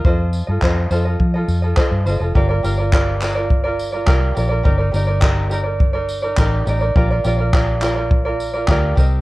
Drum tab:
TB |-x-x-x-x|-x-x-x-x|-x-x-x-x|-x-x-x-x|
CP |--x---x-|--xx--x-|--x---x-|--xx--x-|
BD |o-o-o-o-|o-o-o-o-|o-o-o-o-|o-o-o-oo|